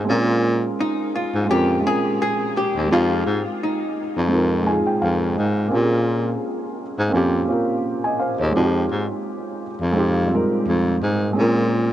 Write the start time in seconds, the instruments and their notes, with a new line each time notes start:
0.05 felt piano G#3 C4 C#4
0.09 baritone saxophone A#2, felt piano F4 A#4
0.80 hollow-body jazz guitar D#4
1.15 hollow-body jazz guitar F4
1.34 baritone saxophone G#2
1.46 felt piano G#3 C4 C#4
1.50 baritone saxophone F2, felt piano F4 A#4, hollow-body jazz guitar G4
1.81 felt piano G#3 C4 C#4
1.86 felt piano F4 A#4, hollow-body jazz guitar G#4
2.22 hollow-body jazz guitar G#4
2.57 hollow-body jazz guitar G4
2.75 baritone saxophone D#2
2.87 felt piano G#3 C4 D#4
2.91 baritone saxophone F2, felt piano F4 G4, hollow-body jazz guitar F4
3.26 baritone saxophone G#2
3.63 hollow-body jazz guitar D#4
4.17 baritone saxophone F2
4.28 felt piano G#3 C4 D#4
4.33 felt piano F4 A#4
4.63 felt piano G#3 C4 D#4 G#5
4.69 felt piano F4 G#4
4.87 felt piano G5
5.02 baritone saxophone F2, felt piano F5
5.37 baritone saxophone G#2, felt piano D#5
5.68 felt piano A#3 C4 C#4
5.73 baritone saxophone A#2, felt piano F4 G4
5.82 felt piano G#4
6.99 baritone saxophone G#2
7.10 felt piano A#3 C4 C#4
7.14 baritone saxophone F2, felt piano F4 G4
7.45 felt piano A#3 C4 C#4
7.50 felt piano F4 A#4
8.04 felt piano D#5 G#5
8.20 felt piano C5 F5
8.39 baritone saxophone D#2, felt piano G#4 C#5
8.51 felt piano G#3 C4 D#4
8.55 baritone saxophone F2, felt piano F4 F#4
8.65 felt piano G4
8.91 baritone saxophone G#2
9.81 baritone saxophone F2
9.92 felt piano G#3 C4 D#4
9.98 felt piano F4 G4
10.28 felt piano G3 C4 D#4
10.33 felt piano G#3 F4 A#4
10.67 baritone saxophone F2
11.03 baritone saxophone G#2
11.33 felt piano G#3 C4 C#4
11.38 baritone saxophone A#2, felt piano F4 A#4